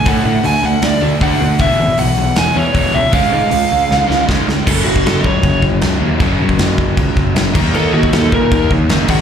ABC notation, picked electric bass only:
X:1
M:4/4
L:1/8
Q:1/4=156
K:C#mix
V:1 name="Picked electric bass" clef=bass
=A,, A,, =D,, D,, D,, D,, D,, D,, | =E,,, G,,, B,,, B,,, E,,, =E,, E,,, C,, | C,, G,, C,, C,, C,, C,, C,, C,, | [K:Gb] G,,, G,,, G,,, D,, G,,, G,,, D,, E,, |
G,,, G,,, G,,,2 D,, G,,, G,,, E,, | E,, E,, E,, B,, E,, E,, G,,, A,,, |]